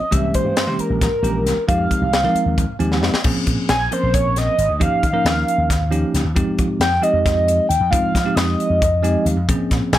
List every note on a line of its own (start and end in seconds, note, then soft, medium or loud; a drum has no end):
0.00 0.15 D#5 medium
0.11 0.30 C2 medium
0.11 0.51 E3 medium
0.11 0.51 G#3 medium
0.11 0.52 A#3 medium
0.11 0.52 C#4 medium
0.11 0.52 G4 medium
0.11 0.34 E5 loud
0.11 kick loud
0.11 closed hi-hat medium
0.34 0.82 C5 medium
0.34 kick medium
0.34 closed hi-hat medium
0.45 0.67 G2 medium
0.57 snare loud
0.57 closed hi-hat medium
0.67 0.76 C3 medium
0.67 1.07 E3 medium
0.67 1.07 G#3 medium
0.67 1.07 A#3 medium
0.67 1.07 C#4 medium
0.67 1.08 G4 medium
0.78 1.02 A#4 medium
0.78 muted slap bass stroke soft
0.78 closed hi-hat soft
0.90 1.08 A#1 medium
1.01 1.65 A#4 medium
1.01 kick loud
1.01 snare soft
1.01 closed hi-hat medium
1.22 1.46 A#1 medium
1.22 1.55 E3 medium
1.22 1.55 G#3 medium
1.22 1.55 A#3 medium
1.22 1.55 C#4 medium
1.22 1.55 G4 medium
1.22 closed hi-hat medium
1.46 1.55 C2 medium
1.46 snare soft
1.46 closed hi-hat medium
1.68 1.86 F2 medium
1.68 2.08 F3 medium
1.68 2.08 G#3 medium
1.68 2.08 C4 medium
1.68 2.08 D#4 medium
1.68 2.08 G4 medium
1.68 2.76 F5 loud
1.68 kick loud
1.68 closed hi-hat medium
1.91 kick medium
1.91 closed hi-hat medium
2.02 2.26 C2 medium
2.13 snare loud
2.13 closed hi-hat medium
2.24 2.64 F3 medium
2.24 2.33 F3 medium
2.24 2.64 G#3 medium
2.24 2.64 C4 medium
2.24 2.64 D#4 medium
2.24 2.64 A#4 medium
2.34 muted slap bass stroke soft
2.34 closed hi-hat medium
2.46 2.64 D#2 medium
2.58 kick loud
2.58 closed hi-hat medium
2.79 3.02 D#2 medium
2.79 3.11 F3 medium
2.79 3.11 G#3 medium
2.79 3.11 C4 medium
2.79 3.12 D#4 medium
2.79 3.12 G4 medium
2.79 3.00 G#5 medium
2.79 closed hi-hat soft
2.92 snare soft
3.02 3.11 F2 medium
3.02 3.22 D#5 medium
3.02 snare medium
3.13 muted slap bass stroke soft
3.13 snare medium
3.24 3.33 A#1 medium
3.24 3.72 F3 medium
3.24 3.72 A#3 medium
3.24 3.72 C4 medium
3.24 3.73 C#4 medium
3.24 3.73 G#4 medium
3.24 kick loud
3.24 crash medium
3.47 3.56 A#2 medium
3.47 kick medium
3.47 closed hi-hat medium
3.69 3.87 A#1 loud
3.69 3.94 G#5 loud
3.69 snare loud
3.69 closed hi-hat medium
3.91 4.55 F3 medium
3.91 4.55 A#3 medium
3.91 4.55 C4 medium
3.91 4.55 C#4 medium
3.91 4.55 A#4 medium
3.91 4.16 C5 medium
3.91 closed hi-hat medium
4.03 4.48 A#1 medium
4.14 4.39 C#5 medium
4.14 kick loud
4.14 closed hi-hat medium
4.36 4.81 D#5 medium
4.36 snare soft
4.36 closed hi-hat medium
4.58 4.67 G#1 medium
4.58 closed hi-hat medium
4.69 4.78 D2 medium
4.80 4.90 D#2 medium
4.80 5.04 F3 medium
4.80 5.04 A#3 medium
4.80 5.04 C#4 medium
4.80 5.04 D#4 medium
4.80 5.04 G4 medium
4.80 6.11 F5 loud
4.80 kick loud
4.80 closed hi-hat medium
5.03 5.12 D#3 medium
5.03 kick medium
5.03 closed hi-hat medium
5.13 5.69 F3 medium
5.13 5.69 A#3 medium
5.13 5.69 C#4 medium
5.13 5.69 D#4 medium
5.13 5.69 A#4 medium
5.25 5.43 D#2 loud
5.25 snare loud
5.25 closed hi-hat medium
5.48 closed hi-hat medium
5.58 6.03 D#2 medium
5.70 kick loud
5.70 snare soft
5.70 closed hi-hat medium
5.91 6.23 F3 medium
5.91 6.23 A#3 medium
5.91 6.23 C#4 medium
5.91 6.23 D#4 medium
5.91 6.23 G4 medium
5.91 closed hi-hat medium
6.14 6.23 C#2 medium
6.14 snare soft
6.14 closed hi-hat medium
6.25 6.34 D#2 medium
6.35 6.45 F2 medium
6.35 6.83 F3 medium
6.35 6.84 G#3 medium
6.35 6.84 C4 medium
6.35 6.84 D#4 medium
6.35 6.84 G4 medium
6.35 kick loud
6.35 closed hi-hat medium
6.58 6.68 F3 medium
6.58 kick medium
6.58 closed hi-hat medium
6.80 6.98 F2 loud
6.80 7.04 G5 loud
6.80 snare loud
6.80 closed hi-hat medium
7.01 7.66 F3 medium
7.01 7.66 G#3 medium
7.01 7.66 C4 medium
7.01 7.66 D#4 medium
7.01 7.66 G4 medium
7.01 7.25 D#5 loud
7.01 closed hi-hat medium
7.13 7.59 F2 medium
7.25 7.67 D#5 medium
7.25 kick loud
7.25 snare soft
7.25 closed hi-hat medium
7.48 closed hi-hat medium
7.69 7.79 D#2 loud
7.69 7.92 G5 medium
7.69 closed hi-hat medium
7.80 7.89 F2 medium
7.91 8.01 F2 medium
7.91 8.15 F3 medium
7.91 8.15 G#3 medium
7.91 8.16 C4 medium
7.91 8.16 D#4 medium
7.91 8.16 F4 medium
7.91 8.37 F5 medium
7.91 kick loud
7.91 closed hi-hat medium
8.02 muted slap bass stroke soft
8.15 8.23 F3 medium
8.15 kick medium
8.15 snare soft
8.15 closed hi-hat medium
8.25 8.81 F3 medium
8.25 8.81 G#3 medium
8.25 8.81 C4 medium
8.25 8.81 D#4 medium
8.25 8.81 G4 medium
8.35 8.54 F2 loud
8.35 9.25 D#5 medium
8.35 snare loud
8.35 closed hi-hat medium
8.60 closed hi-hat soft
8.70 9.15 F2 medium
8.82 kick loud
8.82 closed hi-hat medium
9.03 9.35 F3 medium
9.03 9.35 G#3 medium
9.03 9.35 C4 medium
9.03 9.35 D#4 medium
9.03 9.36 G4 medium
9.03 9.24 G#5 medium
9.03 closed hi-hat medium
9.25 9.34 D#2 medium
9.25 9.47 F5 medium
9.25 closed hi-hat medium
9.36 9.46 F2 medium
9.48 9.57 A#1 loud
9.48 9.96 F3 medium
9.48 9.96 A#3 medium
9.48 9.96 C4 medium
9.48 9.96 C#4 medium
9.48 9.96 G#4 medium
9.48 kick loud
9.48 closed hi-hat medium
9.71 9.80 A#2 medium
9.71 kick medium
9.71 snare soft
9.71 closed hi-hat medium
9.92 9.99 A#1 medium
9.92 9.99 G#5 loud
9.92 snare loud
9.92 closed hi-hat medium